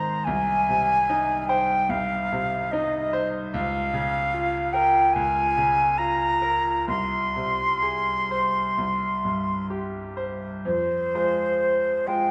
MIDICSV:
0, 0, Header, 1, 3, 480
1, 0, Start_track
1, 0, Key_signature, -4, "major"
1, 0, Tempo, 814111
1, 156, Time_signature, 4, 2, 24, 8
1, 2081, Key_signature, -4, "minor"
1, 3033, Tempo, 848656
1, 3513, Tempo, 896861
1, 3993, Tempo, 940439
1, 6759, End_track
2, 0, Start_track
2, 0, Title_t, "Flute"
2, 0, Program_c, 0, 73
2, 0, Note_on_c, 0, 82, 77
2, 141, Note_on_c, 0, 80, 89
2, 150, Note_off_c, 0, 82, 0
2, 865, Note_off_c, 0, 80, 0
2, 869, Note_on_c, 0, 79, 84
2, 1117, Note_on_c, 0, 77, 86
2, 1126, Note_off_c, 0, 79, 0
2, 1599, Note_on_c, 0, 75, 91
2, 1608, Note_off_c, 0, 77, 0
2, 1936, Note_off_c, 0, 75, 0
2, 2083, Note_on_c, 0, 77, 98
2, 2787, Note_on_c, 0, 79, 94
2, 2796, Note_off_c, 0, 77, 0
2, 3024, Note_on_c, 0, 80, 95
2, 3033, Note_off_c, 0, 79, 0
2, 3503, Note_on_c, 0, 82, 93
2, 3512, Note_off_c, 0, 80, 0
2, 3985, Note_off_c, 0, 82, 0
2, 3988, Note_on_c, 0, 84, 83
2, 5407, Note_off_c, 0, 84, 0
2, 5914, Note_on_c, 0, 72, 69
2, 6636, Note_on_c, 0, 79, 69
2, 6644, Note_off_c, 0, 72, 0
2, 6759, Note_off_c, 0, 79, 0
2, 6759, End_track
3, 0, Start_track
3, 0, Title_t, "Grand piano"
3, 0, Program_c, 1, 0
3, 0, Control_c, 1, 64, 127
3, 0, Note_on_c, 1, 44, 44
3, 0, Note_on_c, 1, 51, 39
3, 0, Note_on_c, 1, 63, 44
3, 0, Note_on_c, 1, 72, 47
3, 133, Note_off_c, 1, 44, 0
3, 156, Note_off_c, 1, 72, 0
3, 160, Note_on_c, 1, 36, 59
3, 164, Control_c, 1, 64, 0
3, 168, Note_off_c, 1, 51, 0
3, 169, Note_off_c, 1, 63, 0
3, 238, Control_c, 1, 64, 127
3, 405, Note_on_c, 1, 48, 45
3, 646, Note_on_c, 1, 63, 50
3, 787, Note_off_c, 1, 48, 0
3, 880, Note_on_c, 1, 72, 53
3, 1025, Note_off_c, 1, 63, 0
3, 1097, Note_off_c, 1, 36, 0
3, 1116, Note_on_c, 1, 36, 54
3, 1263, Note_off_c, 1, 72, 0
3, 1368, Note_on_c, 1, 48, 50
3, 1609, Note_on_c, 1, 63, 54
3, 1749, Note_off_c, 1, 48, 0
3, 1846, Note_on_c, 1, 72, 59
3, 1989, Note_off_c, 1, 63, 0
3, 2056, Note_off_c, 1, 36, 0
3, 2083, Note_off_c, 1, 72, 0
3, 2086, Note_on_c, 1, 37, 66
3, 2090, Control_c, 1, 64, 0
3, 2161, Control_c, 1, 64, 127
3, 2320, Note_on_c, 1, 49, 52
3, 2555, Note_on_c, 1, 65, 54
3, 2695, Note_off_c, 1, 49, 0
3, 2796, Note_on_c, 1, 70, 57
3, 2936, Note_off_c, 1, 65, 0
3, 3012, Note_off_c, 1, 37, 0
3, 3039, Note_on_c, 1, 37, 59
3, 3177, Note_off_c, 1, 70, 0
3, 3276, Note_on_c, 1, 49, 50
3, 3511, Note_on_c, 1, 65, 45
3, 3655, Note_off_c, 1, 49, 0
3, 3741, Note_on_c, 1, 70, 45
3, 3891, Note_off_c, 1, 65, 0
3, 3974, Note_off_c, 1, 37, 0
3, 3988, Note_on_c, 1, 36, 49
3, 3990, Note_off_c, 1, 70, 0
3, 4002, Control_c, 1, 64, 0
3, 4084, Control_c, 1, 64, 127
3, 4233, Note_on_c, 1, 48, 38
3, 4469, Note_on_c, 1, 68, 44
3, 4624, Note_off_c, 1, 48, 0
3, 4718, Note_on_c, 1, 72, 41
3, 4861, Note_off_c, 1, 68, 0
3, 4938, Note_off_c, 1, 36, 0
3, 4958, Note_on_c, 1, 36, 47
3, 4959, Note_off_c, 1, 72, 0
3, 4970, Control_c, 1, 64, 0
3, 5055, Control_c, 1, 64, 127
3, 5196, Note_on_c, 1, 43, 37
3, 5428, Note_on_c, 1, 67, 39
3, 5572, Note_off_c, 1, 43, 0
3, 5666, Note_on_c, 1, 72, 39
3, 5813, Note_off_c, 1, 67, 0
3, 5891, Note_off_c, 1, 36, 0
3, 5913, Note_off_c, 1, 72, 0
3, 5913, Note_on_c, 1, 41, 47
3, 5921, Control_c, 1, 64, 0
3, 6019, Control_c, 1, 64, 127
3, 6152, Note_off_c, 1, 41, 0
3, 6165, Note_on_c, 1, 56, 36
3, 6167, Note_on_c, 1, 65, 34
3, 6168, Note_on_c, 1, 72, 40
3, 6617, Note_off_c, 1, 56, 0
3, 6618, Note_off_c, 1, 65, 0
3, 6619, Note_off_c, 1, 72, 0
3, 6640, Note_on_c, 1, 56, 37
3, 6643, Note_on_c, 1, 65, 35
3, 6646, Note_on_c, 1, 72, 37
3, 6759, Note_off_c, 1, 56, 0
3, 6759, Note_off_c, 1, 65, 0
3, 6759, Note_off_c, 1, 72, 0
3, 6759, End_track
0, 0, End_of_file